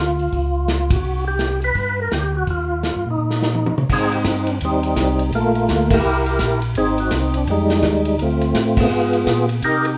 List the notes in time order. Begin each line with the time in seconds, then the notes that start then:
Already playing: D2 F4
0.19 open hi-hat
0.33 C#2, kick, open hi-hat
0.68 snare, closed hi-hat
0.90 F#4, kick, ride
1.03 C2
1.28 G4
1.39 snare, closed hi-hat
1.62 B4, open hi-hat
1.75 G2, kick, open hi-hat
2.01 A#4
2.11 D2 G4, snare, closed hi-hat
2.37 F#4
2.47 D#2 F4, kick, open hi-hat
2.83 snare, closed hi-hat
2.96 G2
3.06 A#2
3.10 D#4
3.18 A#2
3.31 snare
3.43 snare
3.55 high tom
3.66 high tom
3.77 A#2, mid tom
3.89 G#2 C4 D#4 G#4, kick, crash
4.12 G4, ride
4.24 G2 D#4, kick, snare, hi-hat pedal, ride
4.47 D4, ride
4.61 D#2 C4, kick, ride
4.65 G3 D#4
4.83 ride
4.96 C2, kick, snare, hi-hat pedal, ride
5.19 ride
5.32 A#1 A3 A#3 F4, kick, ride
5.55 ride
5.68 D2, kick, snare, hi-hat pedal, ride
5.91 E4 G4 A#4, kick, crash
6.05 C2
6.26 ride
6.39 A#1, kick, snare, hi-hat pedal, ride
6.62 ride
6.75 G#1 C4 D#4 G#4, kick, ride
6.98 F#4, ride
7.11 C2 D#4, kick, snare, hi-hat pedal, ride
7.34 D4, ride
7.47 F2 G3 G#3 D#4, kick, ride
7.70 snare, ride
7.82 D#2, kick, snare, hi-hat pedal, ride
8.05 ride
8.19 D2 A3 C4 F4, kick, ride
8.41 ride
8.54 A2, kick, snare, hi-hat pedal, ride
8.77 B3 F4 G#4, kick, crash
8.90 G#2
9.13 ride
9.26 A#2, kick, snare, hi-hat pedal, ride
9.49 ride
9.62 C3 D#4 G4 A#4, kick, ride
9.85 G4, ride